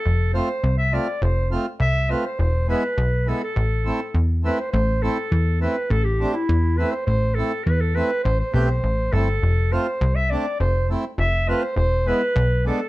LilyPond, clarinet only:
\new Staff \with { instrumentName = "Clarinet" } { \time 2/4 \key a \minor \tempo 4 = 102 a'8 c''8. e''16 d''8 | c''8 r8 e''8 b'16 c''16 | c''8 b'4 a'16 a'16~ | a'4~ a'16 r16 b'16 c''16 |
c''8 a'4 b'8 | a'16 g'8 e'8. b'16 c''16 | c''8 a'8 b'16 a'16 b'8 | c''16 c''16 b'16 c''8. a'8~ |
a'8 c''8. e''16 d''8 | c''8 r8 e''8 b'16 c''16 | c''8 b'4 a'16 a'16 | }